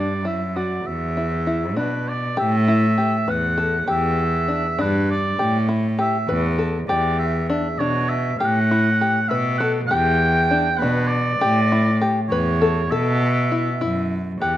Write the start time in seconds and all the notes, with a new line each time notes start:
Already playing: G2 D4 D5
0.25 F#2 E4 E5
0.56 F#4 D5
0.85 E2 E5
1.17 E4
1.47 E4
1.76 B2 D4 B4
2.08 D5
2.37 A2 G4 E5
2.68 E4
2.98 G4
3.28 E2 B4 F#5
3.58 A4
3.87 E2 G4 E5
4.48 D4
4.78 G2 D4 B4
5.10 D5
5.38 A2 G4
5.69 E4
5.99 G4 E5
6.29 E2 B4
6.59 A4
6.88 E2 G4 D5
7.19 E5
7.49 D4 E5
7.79 B2 D4 C#5
8.09 E5
8.38 A2 G4 F#5
8.71 E4
9.01 G4
9.28 B2 B4 E5
9.58 A4 F#5
9.87 E2 G4 G5
10.51 D4
10.78 B2 B4
10.82 D4
11.07 D5
11.41 A2 G4
11.72 E4
12.01 G4
12.29 E2 B4 C#5
12.62 A4
12.90 B2 A4 E5
13.52 E4
13.81 F#2 E4
14.41 E2 G4 F#5